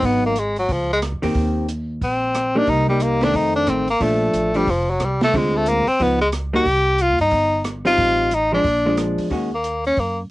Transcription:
0.00 0.66 G#1 medium
0.00 0.33 F#3 medium
0.00 0.34 B3 medium
0.00 0.34 D#4 medium
0.00 kick soft
0.00 open hi-hat soft
0.06 0.25 B3 medium
0.26 0.40 A#3 medium
0.36 0.58 G#3 medium
0.36 closed hi-hat medium
0.56 0.74 F#3 medium
0.56 open hi-hat soft
0.69 1.10 C#2 medium
0.69 0.91 F3 medium
0.69 kick soft
0.69 open hi-hat soft
0.93 0.99 G#3 medium
1.02 cross-stick medium
1.02 closed hi-hat medium
1.12 1.23 F2 medium
1.22 1.34 E2 medium
1.22 1.66 D#3 medium
1.22 1.66 A#3 medium
1.22 1.66 C4 medium
1.22 1.66 G4 medium
1.22 open hi-hat soft
1.35 1.98 D#2 medium
1.35 kick soft
1.35 open hi-hat soft
1.69 closed hi-hat medium
2.01 2.65 A#1 medium
2.01 2.59 C4 medium
2.01 kick soft
2.01 open hi-hat soft
2.35 cross-stick medium
2.35 closed hi-hat medium
2.55 2.87 G3 medium
2.55 2.88 A#3 medium
2.55 2.71 D4 loud
2.55 2.88 D#4 medium
2.67 3.31 C2 medium
2.67 2.88 D#4 medium
2.67 kick soft
2.67 open hi-hat soft
2.88 3.20 G3 medium
2.88 3.04 G3 medium
2.88 3.20 A#3 medium
2.88 3.20 D#4 medium
3.00 3.25 A#3 medium
3.00 closed hi-hat medium
3.21 3.65 D#3 medium
3.21 3.65 A3 medium
3.21 3.65 C4 medium
3.21 3.37 D4 medium
3.21 snare soft
3.21 open hi-hat soft
3.34 3.65 F2 medium
3.34 3.55 D#4 medium
3.34 kick soft
3.34 open hi-hat soft
3.56 3.71 D4 medium
3.67 3.98 A1 medium
3.67 3.86 D#3 medium
3.67 3.86 A3 soft
3.67 3.86 C4 medium
3.67 3.89 C4 medium
3.67 cross-stick medium
3.67 closed hi-hat soft
3.88 4.04 A#3 medium
3.88 open hi-hat soft
4.00 4.31 A#1 medium
4.00 4.51 F3 medium
4.00 4.51 A3 medium
4.00 4.58 A3 medium
4.00 4.51 D4 medium
4.00 kick soft
4.00 open hi-hat soft
4.33 4.64 A1 medium
4.33 closed hi-hat medium
4.54 4.66 F3 medium
4.54 4.71 G3 medium
4.54 4.66 A3 medium
4.54 4.66 D4 medium
4.54 open hi-hat soft
4.67 4.98 F1 medium
4.67 4.92 F3 medium
4.67 kick soft
4.67 open hi-hat soft
4.90 5.05 F#3 medium
5.00 5.31 C2 medium
5.00 5.23 G3 medium
5.00 cross-stick medium
5.00 closed hi-hat medium
5.21 5.38 A3 loud
5.21 snare medium
5.21 open hi-hat soft
5.33 5.83 D2 medium
5.33 5.83 D3 medium
5.33 5.84 G#3 medium
5.33 5.58 G#3 medium
5.33 5.84 C4 medium
5.33 5.84 F4 medium
5.33 kick soft
5.33 open hi-hat soft
5.57 5.70 A3 medium
5.66 5.89 A#3 medium
5.66 closed hi-hat medium
5.86 6.04 C4 loud
5.86 muted upright bass stroke soft
5.86 open hi-hat soft
6.00 6.62 C#2 medium
6.00 6.19 F3 medium
6.00 6.19 B3 soft
6.00 6.20 B3 medium
6.00 6.19 D#4 medium
6.00 kick soft
6.00 open hi-hat soft
6.21 6.28 G#3 medium
6.32 cross-stick medium
6.32 closed hi-hat medium
6.54 6.65 G3 medium
6.54 6.65 A#3 medium
6.54 6.65 D#4 medium
6.54 7.03 G4 loud
6.65 7.07 C2 medium
6.65 kick soft
6.65 open hi-hat soft
6.98 7.20 F4 medium
6.98 closed hi-hat medium
7.10 7.19 D#2 medium
7.18 7.31 G2 medium
7.18 7.63 D#4 medium
7.18 open hi-hat soft
7.31 7.95 G1 loud
7.31 kick soft
7.31 open hi-hat soft
7.64 cross-stick medium
7.64 closed hi-hat medium
7.85 8.29 G3 medium
7.85 8.29 C4 medium
7.85 8.29 D#4 medium
7.85 8.36 F4 loud
7.85 open hi-hat soft
7.98 8.61 A1 medium
7.98 kick soft
7.98 open hi-hat soft
8.31 8.53 D#4 medium
8.31 closed hi-hat medium
8.52 8.63 F3 medium
8.52 8.64 G#3 medium
8.52 8.64 D4 medium
8.52 8.96 D4 medium
8.64 9.15 A#1 medium
8.64 kick soft
8.64 open hi-hat soft
8.86 9.29 F3 medium
8.86 9.29 G#3 medium
8.86 9.29 D4 medium
8.97 cross-stick medium
8.97 closed hi-hat medium
9.18 9.30 E2 medium
9.18 open hi-hat soft
9.30 9.94 D#2 medium
9.30 9.49 D#3 soft
9.30 9.50 G#3 soft
9.30 9.50 C#4 medium
9.30 9.50 F#4 medium
9.30 kick soft
9.30 open hi-hat soft
9.55 9.84 A#3 medium
9.64 closed hi-hat soft
9.85 10.01 C#4 medium
9.85 open hi-hat soft
9.97 10.28 F#2 medium
9.97 10.19 A#3 medium
9.97 kick soft
9.97 open hi-hat soft

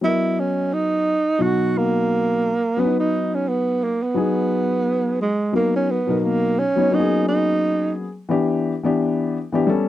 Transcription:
0.01 1.11 F#3 medium
0.01 1.11 B3 medium
0.01 0.41 E4 loud
0.01 1.12 A#4 medium
0.01 1.11 D#5 medium
0.39 0.75 C#4 medium
0.73 1.44 D#4 loud
1.39 2.49 B2 medium
1.39 2.48 F#3 medium
1.39 2.49 D#4 medium
1.39 2.49 F#4 medium
1.39 1.79 F#4 loud
1.78 2.81 A#3 loud
2.77 3.86 F#3 medium
2.77 3.87 B3 medium
2.77 2.99 B3 medium
2.77 2.86 C#4 medium
2.77 3.88 B4 medium
2.85 3.90 D#4 medium
3.00 3.36 D#4 medium
3.34 3.50 C#4 medium
3.48 3.85 B3 medium
3.84 4.05 A#3 medium
4.03 5.20 B3 medium
4.14 5.24 F#3 medium
4.14 5.24 B3 medium
4.14 5.25 D#4 medium
4.14 5.25 G#4 medium
5.22 5.53 G#3 medium
5.53 5.95 F#3 medium
5.53 5.74 A#3 medium
5.53 5.95 B3 medium
5.53 5.96 D#4 medium
5.53 5.96 A#4 medium
5.76 5.92 C#4 medium
5.91 6.20 B3 medium
6.07 6.60 B2 medium
6.07 6.59 F#3 medium
6.07 6.60 D#4 medium
6.07 6.61 A#4 medium
6.20 6.26 B3 medium
6.25 6.61 A#3 medium
6.59 6.95 C#4 loud
6.76 6.89 F#3 medium
6.76 6.90 B3 medium
6.76 6.92 D#4 medium
6.76 6.93 C#5 medium
6.90 8.03 F#3 medium
6.90 8.03 A#3 medium
6.90 8.03 B3 medium
6.90 8.04 C#4 medium
6.90 7.28 D#4 loud
6.90 7.00 F#4 medium
6.99 8.07 G#4 medium
7.28 7.93 D#4 loud
8.29 8.71 E3 medium
8.29 8.71 B3 medium
8.29 8.72 D4 medium
8.29 8.72 G4 medium
8.83 9.36 E3 medium
8.83 9.36 B3 medium
8.83 9.36 D4 medium
8.83 9.37 G4 medium
9.52 9.68 E3 medium
9.52 9.66 B3 medium
9.52 9.68 D4 medium
9.52 9.69 G4 medium
9.67 9.88 G3 medium
9.67 9.88 B3 medium
9.67 9.88 C#4 medium
9.67 9.88 A4 loud

